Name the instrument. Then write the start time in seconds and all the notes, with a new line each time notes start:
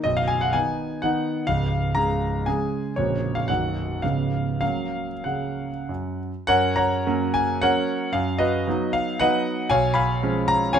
grand piano
0.04 B0 B1 D#5
0.17 F5
0.27 G#5
0.41 F#5
0.53 D#3 B3 D#4 G#5
1.02 D#3 B3 D#4 F#5
1.47 C#1 C#2 F5
1.95 C#3 G#3 G#4 A#5
2.46 C#3 G#3 G#4 G#5
2.96 A#0 A#1 C#3 A#3 F#4 C#5
3.35 F5
3.48 B0 B1 D#3 A#3 F#4 F#5
4.02 C#1 C#2 C#3 B3 C#4 F5
4.61 F#3 A#3 C#4 F5
5.24 C#3 F#5
5.89 F#2
6.47 F#2 A#4 C#5 F#5
6.76 C#5 F#5 A#5
7.06 F#3 A#3 C#4
7.34 G#5
7.62 F#3 A#3 C#4 A#4 C#5 F#5
8.13 F#2 F5
8.38 F#4 B4 D#5
8.67 F#3 B3 D#4
8.93 F5
9.20 F#3 B3 D#4 B4 D#5 F#5
9.70 B1 C#5 F5 G#5
9.94 F5 G#5 B5
10.23 F3 G#3 C#4
10.48 A#5
10.73 F3 G#3 C#4 C#5 F5 G#5